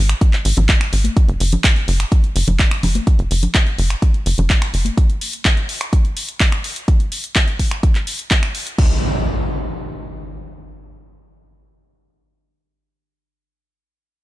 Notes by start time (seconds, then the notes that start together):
Already playing: G#1
0.09 finger snap, closed hi-hat
0.21 kick, closed hi-hat
0.33 clap, closed hi-hat
0.45 G#1, open hi-hat
0.57 G#1, closed hi-hat, low conga
0.69 kick, clap, closed hi-hat
0.81 finger snap, closed hi-hat
0.93 G#1, open hi-hat
1.04 closed hi-hat, high conga
1.17 kick, closed hi-hat
1.28 F#1, closed hi-hat
1.40 F#1, open hi-hat
1.52 closed hi-hat, low conga
1.64 kick, clap, closed hi-hat
1.76 closed hi-hat
1.88 F#1, open hi-hat
2.00 finger snap, closed hi-hat
2.12 kick, closed hi-hat
2.24 closed hi-hat
2.36 F#1, open hi-hat
2.48 F#1, closed hi-hat, low conga
2.59 kick, clap, closed hi-hat
2.71 finger snap, closed hi-hat
2.83 F#1, open hi-hat, low conga
2.95 closed hi-hat, high conga
3.07 kick, closed hi-hat
3.19 F#1, closed hi-hat
3.31 F#1, open hi-hat
3.43 closed hi-hat, low conga
3.55 kick, clap, closed hi-hat
3.67 closed hi-hat
3.78 F#1, open hi-hat
3.90 finger snap, closed hi-hat
4.02 kick, closed hi-hat
4.14 closed hi-hat
4.26 F#1, open hi-hat
4.38 F#1, closed hi-hat, low conga
4.50 kick, clap, closed hi-hat
4.62 finger snap, closed hi-hat
4.74 F#1, open hi-hat
4.85 closed hi-hat, high conga
4.98 kick, closed hi-hat
5.10 closed hi-hat
5.21 open hi-hat
5.33 closed hi-hat
5.45 kick, clap, closed hi-hat
5.57 closed hi-hat
5.69 open hi-hat
5.81 finger snap, closed hi-hat
5.93 kick, closed hi-hat
6.05 closed hi-hat
6.17 open hi-hat
6.29 closed hi-hat
6.40 kick, clap, closed hi-hat
6.52 finger snap, closed hi-hat
6.64 open hi-hat
6.76 closed hi-hat
6.88 kick, closed hi-hat
7.00 closed hi-hat
7.12 open hi-hat
7.24 closed hi-hat
7.36 kick, clap, closed hi-hat
7.48 closed hi-hat
7.59 kick, open hi-hat
7.71 finger snap, closed hi-hat
7.83 kick, closed hi-hat
7.95 clap, closed hi-hat
8.07 open hi-hat
8.19 closed hi-hat
8.31 kick, clap, closed hi-hat
8.43 finger snap, closed hi-hat
8.55 open hi-hat
8.67 closed hi-hat
8.78 kick, crash, impact